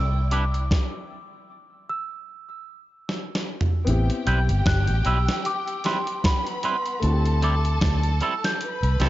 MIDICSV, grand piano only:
0, 0, Header, 1, 2, 480
1, 0, Start_track
1, 0, Key_signature, 0, "minor"
1, 0, Tempo, 789474
1, 432, Time_signature, 4, 2, 24, 8
1, 5528, End_track
2, 0, Start_track
2, 0, Title_t, "Grand piano"
2, 0, Program_c, 0, 0
2, 0, Control_c, 0, 64, 127
2, 0, Note_on_c, 0, 59, 78
2, 0, Note_on_c, 0, 62, 71
2, 0, Note_on_c, 0, 64, 67
2, 0, Note_on_c, 0, 67, 82
2, 400, Note_off_c, 0, 59, 0
2, 406, Note_off_c, 0, 62, 0
2, 412, Note_off_c, 0, 64, 0
2, 419, Note_off_c, 0, 67, 0
2, 440, Control_c, 0, 64, 0
2, 2338, Note_on_c, 0, 59, 75
2, 2349, Note_on_c, 0, 60, 72
2, 2361, Note_on_c, 0, 64, 73
2, 2373, Note_on_c, 0, 67, 85
2, 2485, Control_c, 0, 64, 127
2, 4241, Note_off_c, 0, 59, 0
2, 4246, Note_off_c, 0, 60, 0
2, 4252, Note_off_c, 0, 64, 0
2, 4255, Note_on_c, 0, 57, 62
2, 4258, Note_off_c, 0, 67, 0
2, 4266, Note_on_c, 0, 60, 61
2, 4278, Note_on_c, 0, 64, 63
2, 4280, Control_c, 0, 64, 0
2, 4290, Note_on_c, 0, 66, 63
2, 4326, Note_off_c, 0, 66, 0
2, 4331, Note_on_c, 0, 67, 74
2, 4385, Control_c, 0, 64, 127
2, 5528, Note_off_c, 0, 57, 0
2, 5528, Note_off_c, 0, 60, 0
2, 5528, Note_off_c, 0, 64, 0
2, 5528, Note_off_c, 0, 67, 0
2, 5528, End_track
0, 0, End_of_file